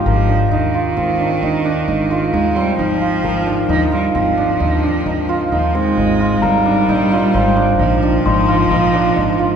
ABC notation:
X:1
M:7/4
L:1/8
Q:1/4=132
K:Ablyd
V:1 name="Glockenspiel"
z12 z2 | z12 z2 | b8 c'6 |]
V:2 name="Hammered dulcimer"
B D E F C D E D E F E C E F | B D E F C D E D E F E C E F | B D E F C D E D E F E D E F |]
V:3 name="Cello" clef=bass
F,2 E,8 A, G, F,2- | F,2 F, G, F,6 F, A,3 | G,6 F,8 |]
V:4 name="Upright bass" clef=bass
A,,,2 E,,2 A,,,2 E,,2 A,,,2 E,,2 A,,,2 | A,,,2 E,,2 A,,,2 E,,2 A,,,2 E,,2 A,,,2 | A,,,2 B,,,2 A,,,2 B,,,2 A,,,2 B,,,2 A,,,2 |]